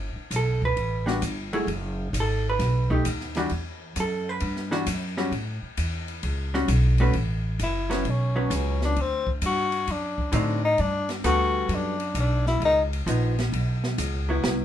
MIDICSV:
0, 0, Header, 1, 6, 480
1, 0, Start_track
1, 0, Tempo, 455235
1, 1778, Time_signature, 4, 2, 24, 8
1, 15446, End_track
2, 0, Start_track
2, 0, Title_t, "Tenor saxophone"
2, 0, Program_c, 0, 66
2, 8044, Note_on_c, 0, 64, 85
2, 8542, Note_on_c, 0, 61, 79
2, 8558, Note_off_c, 0, 64, 0
2, 8998, Note_off_c, 0, 61, 0
2, 9014, Note_on_c, 0, 61, 68
2, 9293, Note_off_c, 0, 61, 0
2, 9328, Note_on_c, 0, 62, 96
2, 9503, Note_on_c, 0, 60, 86
2, 9519, Note_off_c, 0, 62, 0
2, 9799, Note_off_c, 0, 60, 0
2, 9970, Note_on_c, 0, 66, 95
2, 10452, Note_on_c, 0, 62, 79
2, 10468, Note_off_c, 0, 66, 0
2, 10910, Note_off_c, 0, 62, 0
2, 10916, Note_on_c, 0, 62, 75
2, 11204, Note_off_c, 0, 62, 0
2, 11227, Note_on_c, 0, 63, 105
2, 11396, Note_on_c, 0, 62, 94
2, 11412, Note_off_c, 0, 63, 0
2, 11706, Note_off_c, 0, 62, 0
2, 11872, Note_on_c, 0, 66, 96
2, 12385, Note_on_c, 0, 62, 81
2, 12401, Note_off_c, 0, 66, 0
2, 12840, Note_off_c, 0, 62, 0
2, 12862, Note_on_c, 0, 62, 83
2, 13138, Note_off_c, 0, 62, 0
2, 13154, Note_on_c, 0, 64, 100
2, 13294, Note_off_c, 0, 64, 0
2, 13338, Note_on_c, 0, 63, 93
2, 13517, Note_off_c, 0, 63, 0
2, 15446, End_track
3, 0, Start_track
3, 0, Title_t, "Hollow-body jazz guitar"
3, 0, Program_c, 1, 26
3, 380, Note_on_c, 1, 69, 68
3, 671, Note_off_c, 1, 69, 0
3, 687, Note_on_c, 1, 71, 95
3, 1118, Note_on_c, 1, 55, 69
3, 1128, Note_on_c, 1, 59, 69
3, 1128, Note_on_c, 1, 62, 70
3, 1137, Note_on_c, 1, 66, 79
3, 1270, Note_off_c, 1, 71, 0
3, 1272, Note_off_c, 1, 55, 0
3, 1277, Note_off_c, 1, 59, 0
3, 1277, Note_off_c, 1, 62, 0
3, 1281, Note_off_c, 1, 66, 0
3, 1613, Note_on_c, 1, 54, 77
3, 1616, Note_on_c, 1, 57, 75
3, 1623, Note_on_c, 1, 64, 71
3, 1625, Note_on_c, 1, 68, 95
3, 1759, Note_off_c, 1, 54, 0
3, 1761, Note_off_c, 1, 57, 0
3, 1764, Note_off_c, 1, 64, 0
3, 1765, Note_off_c, 1, 68, 0
3, 2322, Note_on_c, 1, 69, 67
3, 2601, Note_off_c, 1, 69, 0
3, 2631, Note_on_c, 1, 71, 89
3, 3060, Note_on_c, 1, 57, 67
3, 3066, Note_on_c, 1, 63, 69
3, 3077, Note_on_c, 1, 67, 70
3, 3202, Note_off_c, 1, 57, 0
3, 3202, Note_off_c, 1, 71, 0
3, 3205, Note_off_c, 1, 63, 0
3, 3211, Note_off_c, 1, 67, 0
3, 3552, Note_on_c, 1, 52, 83
3, 3554, Note_on_c, 1, 55, 81
3, 3554, Note_on_c, 1, 62, 85
3, 3565, Note_on_c, 1, 66, 86
3, 3688, Note_off_c, 1, 52, 0
3, 3689, Note_off_c, 1, 55, 0
3, 3689, Note_off_c, 1, 62, 0
3, 3695, Note_off_c, 1, 66, 0
3, 4219, Note_on_c, 1, 69, 65
3, 4526, Note_off_c, 1, 69, 0
3, 4526, Note_on_c, 1, 71, 85
3, 4969, Note_on_c, 1, 52, 66
3, 4973, Note_on_c, 1, 55, 69
3, 4975, Note_on_c, 1, 62, 71
3, 4983, Note_on_c, 1, 66, 84
3, 5116, Note_off_c, 1, 52, 0
3, 5119, Note_off_c, 1, 55, 0
3, 5120, Note_off_c, 1, 62, 0
3, 5123, Note_off_c, 1, 66, 0
3, 5151, Note_off_c, 1, 71, 0
3, 5456, Note_on_c, 1, 55, 66
3, 5461, Note_on_c, 1, 61, 76
3, 5467, Note_on_c, 1, 66, 71
3, 5600, Note_off_c, 1, 55, 0
3, 5602, Note_off_c, 1, 61, 0
3, 5605, Note_off_c, 1, 66, 0
3, 6897, Note_on_c, 1, 55, 64
3, 6901, Note_on_c, 1, 61, 74
3, 6903, Note_on_c, 1, 66, 77
3, 7040, Note_off_c, 1, 55, 0
3, 7042, Note_off_c, 1, 61, 0
3, 7043, Note_off_c, 1, 66, 0
3, 7381, Note_on_c, 1, 57, 69
3, 7387, Note_on_c, 1, 61, 70
3, 7387, Note_on_c, 1, 66, 80
3, 7397, Note_on_c, 1, 71, 78
3, 7522, Note_off_c, 1, 57, 0
3, 7525, Note_off_c, 1, 61, 0
3, 7525, Note_off_c, 1, 66, 0
3, 7530, Note_off_c, 1, 71, 0
3, 8327, Note_on_c, 1, 54, 61
3, 8336, Note_on_c, 1, 59, 67
3, 8342, Note_on_c, 1, 61, 64
3, 8475, Note_off_c, 1, 54, 0
3, 8479, Note_off_c, 1, 59, 0
3, 8482, Note_off_c, 1, 61, 0
3, 8812, Note_on_c, 1, 54, 67
3, 8817, Note_on_c, 1, 59, 67
3, 8824, Note_on_c, 1, 61, 64
3, 9421, Note_off_c, 1, 54, 0
3, 9424, Note_off_c, 1, 59, 0
3, 9427, Note_off_c, 1, 61, 0
3, 10881, Note_on_c, 1, 50, 64
3, 10892, Note_on_c, 1, 54, 66
3, 10897, Note_on_c, 1, 60, 80
3, 10901, Note_on_c, 1, 63, 74
3, 11176, Note_off_c, 1, 50, 0
3, 11182, Note_off_c, 1, 54, 0
3, 11184, Note_off_c, 1, 60, 0
3, 11186, Note_off_c, 1, 63, 0
3, 11854, Note_on_c, 1, 55, 65
3, 11857, Note_on_c, 1, 59, 70
3, 11863, Note_on_c, 1, 69, 69
3, 11865, Note_on_c, 1, 66, 65
3, 12591, Note_off_c, 1, 55, 0
3, 12592, Note_off_c, 1, 59, 0
3, 12596, Note_off_c, 1, 69, 0
3, 12597, Note_off_c, 1, 66, 0
3, 13778, Note_on_c, 1, 53, 60
3, 13792, Note_on_c, 1, 59, 67
3, 13797, Note_on_c, 1, 63, 67
3, 14065, Note_off_c, 1, 53, 0
3, 14072, Note_off_c, 1, 59, 0
3, 14074, Note_off_c, 1, 63, 0
3, 15065, Note_on_c, 1, 54, 52
3, 15076, Note_on_c, 1, 59, 61
3, 15079, Note_on_c, 1, 64, 68
3, 15446, Note_off_c, 1, 54, 0
3, 15446, Note_off_c, 1, 59, 0
3, 15446, Note_off_c, 1, 64, 0
3, 15446, End_track
4, 0, Start_track
4, 0, Title_t, "Upright bass"
4, 0, Program_c, 2, 32
4, 0, Note_on_c, 2, 31, 93
4, 150, Note_off_c, 2, 31, 0
4, 323, Note_on_c, 2, 35, 93
4, 796, Note_off_c, 2, 35, 0
4, 806, Note_on_c, 2, 33, 80
4, 1277, Note_off_c, 2, 33, 0
4, 1287, Note_on_c, 2, 31, 96
4, 1758, Note_off_c, 2, 31, 0
4, 1763, Note_on_c, 2, 30, 98
4, 2236, Note_off_c, 2, 30, 0
4, 2247, Note_on_c, 2, 32, 95
4, 2717, Note_off_c, 2, 32, 0
4, 2733, Note_on_c, 2, 35, 90
4, 3200, Note_off_c, 2, 35, 0
4, 3224, Note_on_c, 2, 39, 89
4, 3686, Note_off_c, 2, 39, 0
4, 3699, Note_on_c, 2, 40, 86
4, 4163, Note_off_c, 2, 40, 0
4, 4176, Note_on_c, 2, 42, 101
4, 4642, Note_off_c, 2, 42, 0
4, 4655, Note_on_c, 2, 43, 93
4, 5121, Note_off_c, 2, 43, 0
4, 5131, Note_on_c, 2, 42, 105
4, 5595, Note_off_c, 2, 42, 0
4, 5602, Note_on_c, 2, 45, 87
4, 5906, Note_off_c, 2, 45, 0
4, 6090, Note_on_c, 2, 40, 88
4, 6558, Note_off_c, 2, 40, 0
4, 6568, Note_on_c, 2, 37, 94
4, 7037, Note_off_c, 2, 37, 0
4, 7044, Note_on_c, 2, 35, 107
4, 7515, Note_off_c, 2, 35, 0
4, 7529, Note_on_c, 2, 33, 86
4, 7998, Note_off_c, 2, 33, 0
4, 8008, Note_on_c, 2, 30, 85
4, 8477, Note_off_c, 2, 30, 0
4, 8485, Note_on_c, 2, 35, 80
4, 8955, Note_off_c, 2, 35, 0
4, 8966, Note_on_c, 2, 37, 103
4, 9436, Note_off_c, 2, 37, 0
4, 9454, Note_on_c, 2, 38, 87
4, 9920, Note_off_c, 2, 38, 0
4, 9931, Note_on_c, 2, 43, 93
4, 10399, Note_off_c, 2, 43, 0
4, 10410, Note_on_c, 2, 42, 79
4, 10878, Note_off_c, 2, 42, 0
4, 10888, Note_on_c, 2, 45, 109
4, 11357, Note_off_c, 2, 45, 0
4, 11378, Note_on_c, 2, 43, 94
4, 11842, Note_off_c, 2, 43, 0
4, 11853, Note_on_c, 2, 38, 91
4, 12313, Note_off_c, 2, 38, 0
4, 12320, Note_on_c, 2, 42, 93
4, 12793, Note_off_c, 2, 42, 0
4, 12806, Note_on_c, 2, 35, 94
4, 13276, Note_off_c, 2, 35, 0
4, 13288, Note_on_c, 2, 37, 92
4, 13757, Note_off_c, 2, 37, 0
4, 13773, Note_on_c, 2, 34, 92
4, 14240, Note_off_c, 2, 34, 0
4, 14259, Note_on_c, 2, 35, 84
4, 14723, Note_off_c, 2, 35, 0
4, 14741, Note_on_c, 2, 37, 99
4, 15204, Note_off_c, 2, 37, 0
4, 15223, Note_on_c, 2, 36, 87
4, 15446, Note_off_c, 2, 36, 0
4, 15446, End_track
5, 0, Start_track
5, 0, Title_t, "Muted upright bass strokes"
5, 169, Note_on_c, 9, 29, 37
5, 274, Note_off_c, 9, 29, 0
5, 5928, Note_on_c, 9, 29, 41
5, 6034, Note_off_c, 9, 29, 0
5, 15446, End_track
6, 0, Start_track
6, 0, Title_t, "Drums"
6, 326, Note_on_c, 9, 44, 67
6, 326, Note_on_c, 9, 51, 73
6, 431, Note_off_c, 9, 44, 0
6, 431, Note_off_c, 9, 51, 0
6, 654, Note_on_c, 9, 36, 64
6, 760, Note_off_c, 9, 36, 0
6, 809, Note_on_c, 9, 51, 55
6, 915, Note_off_c, 9, 51, 0
6, 1136, Note_on_c, 9, 38, 58
6, 1241, Note_off_c, 9, 38, 0
6, 1285, Note_on_c, 9, 44, 59
6, 1285, Note_on_c, 9, 51, 72
6, 1390, Note_off_c, 9, 44, 0
6, 1390, Note_off_c, 9, 51, 0
6, 1613, Note_on_c, 9, 51, 47
6, 1719, Note_off_c, 9, 51, 0
6, 1772, Note_on_c, 9, 51, 54
6, 1877, Note_off_c, 9, 51, 0
6, 2257, Note_on_c, 9, 44, 60
6, 2257, Note_on_c, 9, 51, 81
6, 2362, Note_off_c, 9, 44, 0
6, 2362, Note_off_c, 9, 51, 0
6, 2735, Note_on_c, 9, 51, 65
6, 2741, Note_on_c, 9, 38, 41
6, 2841, Note_off_c, 9, 51, 0
6, 2846, Note_off_c, 9, 38, 0
6, 3061, Note_on_c, 9, 36, 67
6, 3166, Note_off_c, 9, 36, 0
6, 3215, Note_on_c, 9, 44, 70
6, 3215, Note_on_c, 9, 51, 84
6, 3320, Note_off_c, 9, 44, 0
6, 3320, Note_off_c, 9, 51, 0
6, 3384, Note_on_c, 9, 38, 28
6, 3489, Note_off_c, 9, 38, 0
6, 3529, Note_on_c, 9, 51, 45
6, 3538, Note_on_c, 9, 38, 44
6, 3634, Note_off_c, 9, 51, 0
6, 3644, Note_off_c, 9, 38, 0
6, 3684, Note_on_c, 9, 51, 57
6, 3790, Note_off_c, 9, 51, 0
6, 4173, Note_on_c, 9, 44, 65
6, 4173, Note_on_c, 9, 51, 74
6, 4279, Note_off_c, 9, 44, 0
6, 4279, Note_off_c, 9, 51, 0
6, 4643, Note_on_c, 9, 51, 66
6, 4748, Note_off_c, 9, 51, 0
6, 4811, Note_on_c, 9, 38, 33
6, 4917, Note_off_c, 9, 38, 0
6, 4972, Note_on_c, 9, 38, 52
6, 5078, Note_off_c, 9, 38, 0
6, 5129, Note_on_c, 9, 44, 77
6, 5129, Note_on_c, 9, 51, 84
6, 5235, Note_off_c, 9, 44, 0
6, 5235, Note_off_c, 9, 51, 0
6, 5455, Note_on_c, 9, 38, 48
6, 5560, Note_off_c, 9, 38, 0
6, 5612, Note_on_c, 9, 51, 57
6, 5718, Note_off_c, 9, 51, 0
6, 6087, Note_on_c, 9, 44, 58
6, 6087, Note_on_c, 9, 51, 84
6, 6192, Note_off_c, 9, 44, 0
6, 6192, Note_off_c, 9, 51, 0
6, 6411, Note_on_c, 9, 51, 48
6, 6516, Note_off_c, 9, 51, 0
6, 6567, Note_on_c, 9, 51, 69
6, 6672, Note_off_c, 9, 51, 0
6, 6897, Note_on_c, 9, 38, 41
6, 7002, Note_off_c, 9, 38, 0
6, 7046, Note_on_c, 9, 44, 65
6, 7046, Note_on_c, 9, 51, 82
6, 7151, Note_off_c, 9, 44, 0
6, 7151, Note_off_c, 9, 51, 0
6, 7360, Note_on_c, 9, 51, 51
6, 7466, Note_off_c, 9, 51, 0
6, 7521, Note_on_c, 9, 51, 55
6, 7627, Note_off_c, 9, 51, 0
6, 8007, Note_on_c, 9, 44, 57
6, 8007, Note_on_c, 9, 51, 76
6, 8112, Note_off_c, 9, 44, 0
6, 8112, Note_off_c, 9, 51, 0
6, 8336, Note_on_c, 9, 51, 52
6, 8341, Note_on_c, 9, 38, 58
6, 8441, Note_off_c, 9, 51, 0
6, 8446, Note_off_c, 9, 38, 0
6, 8487, Note_on_c, 9, 51, 56
6, 8592, Note_off_c, 9, 51, 0
6, 8969, Note_on_c, 9, 44, 68
6, 8969, Note_on_c, 9, 51, 77
6, 9075, Note_off_c, 9, 44, 0
6, 9075, Note_off_c, 9, 51, 0
6, 9296, Note_on_c, 9, 38, 51
6, 9401, Note_off_c, 9, 38, 0
6, 9451, Note_on_c, 9, 51, 58
6, 9557, Note_off_c, 9, 51, 0
6, 9771, Note_on_c, 9, 36, 64
6, 9877, Note_off_c, 9, 36, 0
6, 9928, Note_on_c, 9, 44, 65
6, 9928, Note_on_c, 9, 51, 84
6, 10034, Note_off_c, 9, 44, 0
6, 10034, Note_off_c, 9, 51, 0
6, 10248, Note_on_c, 9, 51, 50
6, 10354, Note_off_c, 9, 51, 0
6, 10412, Note_on_c, 9, 51, 62
6, 10517, Note_off_c, 9, 51, 0
6, 10733, Note_on_c, 9, 36, 58
6, 10839, Note_off_c, 9, 36, 0
6, 10886, Note_on_c, 9, 44, 76
6, 10886, Note_on_c, 9, 51, 82
6, 10991, Note_off_c, 9, 44, 0
6, 10991, Note_off_c, 9, 51, 0
6, 11366, Note_on_c, 9, 51, 57
6, 11471, Note_off_c, 9, 51, 0
6, 11690, Note_on_c, 9, 51, 50
6, 11696, Note_on_c, 9, 38, 50
6, 11796, Note_off_c, 9, 51, 0
6, 11801, Note_off_c, 9, 38, 0
6, 11852, Note_on_c, 9, 44, 56
6, 11852, Note_on_c, 9, 51, 83
6, 11958, Note_off_c, 9, 44, 0
6, 11958, Note_off_c, 9, 51, 0
6, 12327, Note_on_c, 9, 51, 69
6, 12432, Note_off_c, 9, 51, 0
6, 12649, Note_on_c, 9, 51, 53
6, 12755, Note_off_c, 9, 51, 0
6, 12809, Note_on_c, 9, 44, 54
6, 12809, Note_on_c, 9, 51, 85
6, 12915, Note_off_c, 9, 44, 0
6, 12915, Note_off_c, 9, 51, 0
6, 13142, Note_on_c, 9, 38, 47
6, 13248, Note_off_c, 9, 38, 0
6, 13301, Note_on_c, 9, 51, 56
6, 13407, Note_off_c, 9, 51, 0
6, 13633, Note_on_c, 9, 51, 50
6, 13739, Note_off_c, 9, 51, 0
6, 13785, Note_on_c, 9, 44, 60
6, 13785, Note_on_c, 9, 51, 77
6, 13891, Note_off_c, 9, 44, 0
6, 13891, Note_off_c, 9, 51, 0
6, 14113, Note_on_c, 9, 51, 52
6, 14118, Note_on_c, 9, 38, 65
6, 14218, Note_off_c, 9, 51, 0
6, 14223, Note_off_c, 9, 38, 0
6, 14270, Note_on_c, 9, 51, 72
6, 14376, Note_off_c, 9, 51, 0
6, 14590, Note_on_c, 9, 38, 65
6, 14695, Note_off_c, 9, 38, 0
6, 14742, Note_on_c, 9, 44, 69
6, 14742, Note_on_c, 9, 51, 83
6, 14848, Note_off_c, 9, 44, 0
6, 14848, Note_off_c, 9, 51, 0
6, 15222, Note_on_c, 9, 38, 92
6, 15328, Note_off_c, 9, 38, 0
6, 15446, End_track
0, 0, End_of_file